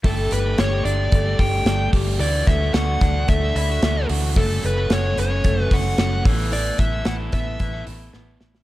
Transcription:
0.03 G1 G3 A3 D4 G4 A4, kick, open hi-hat
0.31 G1 A3 B4, hi-hat pedal, open hi-hat
0.45 A3 D4 G4
0.58 G1 G4 C#5, snare, hi-hat pedal, open hi-hat
0.72 A3 D4 G4
0.85 G1 D4 D5, hi-hat pedal, open hi-hat
1.12 G1 A3, kick, hi-hat pedal, open hi-hat
1.25 A3 D4 G4
1.39 G1 G4 G5, kick, hi-hat pedal, open hi-hat
1.65 G1 G3 A3 D4 G4, snare, hi-hat pedal, open hi-hat
1.93 G1 G4, kick, hi-hat pedal, open hi-hat
2.19 D2 E3 A3 D4 F#4 D5, hi-hat pedal, open hi-hat
2.47 D2 A3 E5, kick, hi-hat pedal, open hi-hat
2.60 A3 D4 F#4
2.74 D2 F#4 F#5, snare, hi-hat pedal, open hi-hat
2.86 A3 D4 F#4
3.01 D2 D4, kick, hi-hat pedal, open hi-hat
3.28 D2 A3 E5, kick, hi-hat pedal, open hi-hat
3.40 A3 D4 F#4
3.55 D2 E4 E5, hi-hat pedal, open hi-hat
3.69 F#4
3.81 D2 E3 A3 D4 F#4, snare, hi-hat pedal, open hi-hat
4.09 D2 F#4, hi-hat pedal, open hi-hat
4.36 F#1 F#3 A3 C#4 F#4 A4, kick, hi-hat pedal, open hi-hat
4.63 F#1 A3 B4, hi-hat pedal, open hi-hat
4.76 F#3 A3 C#4 F#4
4.90 F#1 F#4 C#5, snare, hi-hat pedal, open hi-hat
5.03 F#3 A3 C#4 F#4
5.17 F#1 B3 C#5, hi-hat pedal, open hi-hat
5.31 C#4
5.44 F#1 A3, kick, hi-hat pedal, open hi-hat
5.57 F#3 A3 C#4 F#4
5.63 B4
5.71 F#1 F#4 F#5, kick, hi-hat pedal, open hi-hat
5.97 F#1 F#3 A3 C#4 F#4, snare, hi-hat pedal, open hi-hat
6.25 A1 E3 A3 B3 E4 A4, kick, hi-hat pedal, open hi-hat
6.52 E3 D5, hi-hat pedal, open hi-hat
6.78 A1 E3 E5, kick, hi-hat pedal, open hi-hat
6.92 B3 E4 A4
7.05 A1 E4 F#5, snare, hi-hat pedal, open hi-hat
7.19 B3 E4 A4
7.32 A1 B3 E5, kick, hi-hat pedal, open hi-hat
7.60 A1 E3, kick, hi-hat pedal, open hi-hat
7.73 B3 E4 A4
7.86 A1 E4, hi-hat pedal, open hi-hat
8.13 A1 A3 B3 E4 A4, snare
8.40 A1 E4, snare
8.55 snare

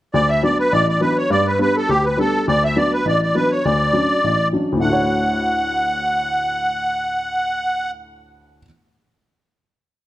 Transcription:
0.14 D2 D5
0.29 E5
0.43 F#3 B3 D4 D5
0.59 B4
0.72 A1 D5
0.89 D5
1.01 F#3 B3 D4 B4
1.18 C#5
1.30 G2 D5
1.47 B4
1.59 G3 B3 D4 B4
1.77 A4
1.89 D2 G4
2.05 B4
2.17 G3 B3 D4 A4
2.48 D2 D5
2.64 E5
2.76 F#3 B3 D4 D5
2.93 B4
3.05 A1 D5
3.22 D5
3.35 F#3 B3 D4 B4
3.51 C#5
3.64 D2 D5
3.93 F#3 C#4 D4
4.24 A1
4.53 F#3 C#4 D4
4.72 D2
4.76 A2 A3
4.81 D4 F#5
4.89 F#4
4.93 C#5

